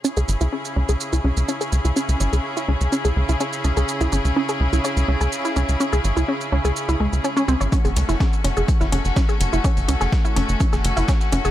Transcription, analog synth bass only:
X:1
M:4/4
L:1/16
Q:1/4=125
K:C#m
V:1 name="Analog synth bass" clef=bass
z C,, G,,, C,, z2 C,, C,, z C,, C,, C,, z2 C,, C,, | z C,, G,,, C,, z2 C,, C,, z C,, C,, C,, z2 C,, C,, | z C,, G,,, C,, z2 C,, C,, z C,, C,, C,, z2 C,, C,, | z C,, G,,, C,, z2 C,, C,, z C,, C,, C,, z2 C,, G,,, |
z F,,, C,, F,,, z2 F,,, F,,, z F,,, F,,, F,,, z2 F,,, F,,, | z F,,, C,, F,,, z2 F,,, F,,, z F,,, F,,, F,,, z2 F,,, F,,, |]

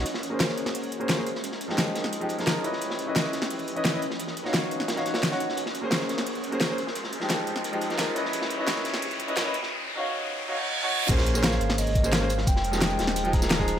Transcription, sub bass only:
X:1
M:4/4
L:1/16
Q:1/4=174
K:Bbm
V:1 name="Sub bass" clef=bass
B,,,6 A,,,8- A,,,2 | F,,,6 E,,,8- E,,,2 | D,,6 _C,,8- C,,2 | E,,6 D,,8 E,,, D,, |
B,,,6 A,,,8- A,,,2 | z16 | z16 | z16 |
B,,,6 A,,,8- A,,,2 | F,,,6 E,,,8- E,,,2 |]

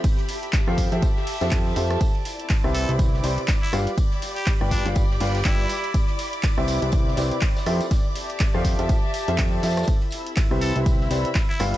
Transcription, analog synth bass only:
X:1
M:4/4
L:1/16
Q:"Swing 16ths" 1/4=122
K:C
V:1 name="Analog synth bass" clef=bass
z4 z F,,2 F,, z3 F,,3 F,,2 | z4 z C,,2 C,,3 C,, z3 G,,, z | z4 z G,,,2 G,,,3 G,,,2 G,,,2 z2 | z4 z C,,2 C,,3 C,, z3 F,, z |
z4 z F,,2 F,, z3 F,,3 F,,2 | z4 z C,,2 C,,3 C,, z3 G,,, z |]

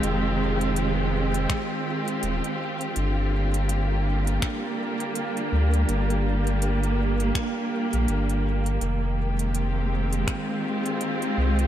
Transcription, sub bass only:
X:1
M:4/4
L:1/16
Q:"Swing 16ths" 1/4=82
K:Fdor
V:1 name="Sub bass" clef=bass
F,,,8 z4 E,,, z3 | G,,,8 z6 D,,2 | G,,,8 z3 B,,, G,,,4 | F,,,8 z6 C,,2 |]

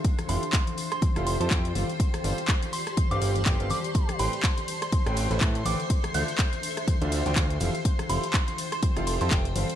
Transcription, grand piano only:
X:1
M:4/4
L:1/16
Q:"Swing 16ths" 1/4=123
K:Flyd
V:1 name="Grand piano"
z2 [F,EGAf] z6 [F,EGAf]2 [F,EGAa] [EGAg] z [G,CGAf] z | z2 [G,CGAf] z6 [G,CGAf] [G,CGAf] z [G,CGAg] [G,CGAf] z2 | z2 [A,,CABg] z6 [A,,CABg]2 [A,,CABb] [A,,CABa] z [D,CABg] z | z2 [D,DFce] z6 [D,DFce]2 [D,DFcg] [DFcf] z [F,EGAf] z |
z2 [F,EGAf] z6 [F,EGAf]2 [F,EGAa] [EGAg] z [G,CGAf] z |]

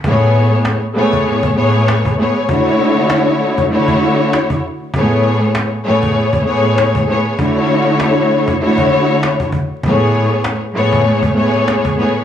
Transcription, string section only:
X:1
M:4/4
L:1/8
Q:"Swing 16ths" 1/4=98
K:A
V:1 name="String section"
[A,,A,B,Gc]2 z [A,,A,B,Gc]2 [A,,A,B,Gc]2 [A,,A,B,Gc] | [D,A,EFc]4 [D,A,EFc]3 z | [A,,A,B,Gc]2 z [A,,A,B,Gc]2 [A,,A,B,Gc]2 [A,,A,B,Gc] | [D,A,EFc]4 [D,A,EFc]3 z |
[A,,A,B,Gc]2 z [A,,A,B,Gc]2 [A,,A,B,Gc]2 [A,,A,B,Gc] |]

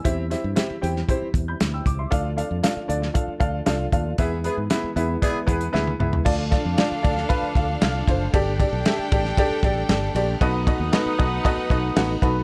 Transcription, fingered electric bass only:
X:1
M:4/4
L:1/16
Q:1/4=116
K:Ddor
V:1 name="Fingered electric bass" clef=bass
E,,3 G,, z2 E,,2 z2 E,,2 D,,2 ^C,,2 | D,,3 F,, z2 D,,2 z2 D,,2 C,,2 ^D,,2 | E,,3 ^G,, z2 E,,2 z2 E,,2 D,,2 ^C,,2 | D,,3 F,, z2 D,,2 z2 D,,2 C,,2 ^F,,,2 |
G,,,3 B,,, z2 A,,,2 z2 A,,,2 G,,,2 _B,,,2 | B,,,3 ^D,, z2 B,,,2 z2 B,,,2 A,,,2 B,,,2 |]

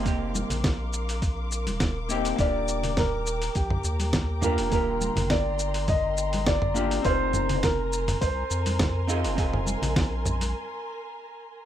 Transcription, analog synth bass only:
X:1
M:4/4
L:1/16
Q:"Swing 16ths" 1/4=103
K:Eb
V:1 name="Analog synth bass" clef=bass
F,,,3 B,,,8 E,,,4- E,,, | E,,,8 B,,, z E,,4- E,, E,,,- | E,,,3 G,,,12- G,,, | F,,,8 C,, z F,,4- F,, F,,,- |
F,,,3 B,,,4- B,,, z8 |]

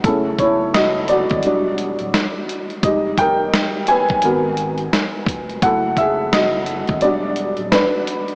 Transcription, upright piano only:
X:1
M:4/4
L:1/16
Q:"Swing 16ths" 1/4=86
K:E
V:1 name="Upright piano"
[CA]2 [Ec]2 [Fd]2 [F=d]8 z2 | [=G_e]2 [^A=g]4 [B_a]8 z2 | [Af]2 [Ge]2 [Fd]4 [F=d]4 [=DB]3 z |]
V:2 name="Upright piano"
[A,EG]6 z2 [F,=G,=D]8 | [=G,_A,_E]2 z6 [B,F^A]8 | [F,A,E]8 [F,=G,=D]8 |]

